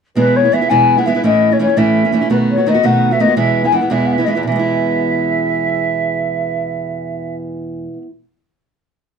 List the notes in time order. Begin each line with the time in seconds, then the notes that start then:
0.15 E2 B2 E3 G#3 B3 E4 B4
0.36 C#5
0.44 E3 G#3 B3 E4
0.52 E3 G#3 B3 E4 E5
0.61 E3 G#3 B3 E4
0.69 E2 B2 E3 G#3 B3 E4 G#5
0.97 E3 G#3 B3 E4 F#5
1.06 E3 G#3 B3 E4 E5
1.15 E3 G#3 B3 E4
1.23 A2 E3 A3 C#4 E4 D#5
1.51 A3 C#4 E4 C#5
1.59 E3 A3 C#4 E4 C#5
1.68 A3 C#4 E4
1.76 A2 E3 A3 C#4 E4 E5
2.05 A3 C#4 E4
2.12 E3 A3 C#4 E4
2.21 A3 C#4 E4
2.30 B2 D#3 A3 B3 F#4 B4
2.50 C#5
2.57 A3 B3 F#4
2.66 D#3 A3 B3 F#4 D#5
2.74 A3 B3 F#4
2.83 B2 D#3 A3 B3 F#4 F#5
3.11 A3 B3 F#4 E5
3.19 D#3 A3 B3 F#4 D#5
3.28 A3 B3 F#4
3.36 E2 B2 E3 G#3 B3 E4 E5
3.64 E3 G#3 B3 E4 G#5
3.72 E3 G#3 B3 E4 F#5
3.81 E3 G#3 B3 E4
3.90 E2 B2 E3 G#3 B3 E4 E5
4.06 F#5
4.12 E5
4.18 E3 G#3 B3 E4
4.24 E3 G#3 B3 E4 D#5
4.29 E5
4.35 E2 E3 G#3 B3 E4
4.43 B2 E5
4.47 E3
4.52 G#3 B3
4.59 E4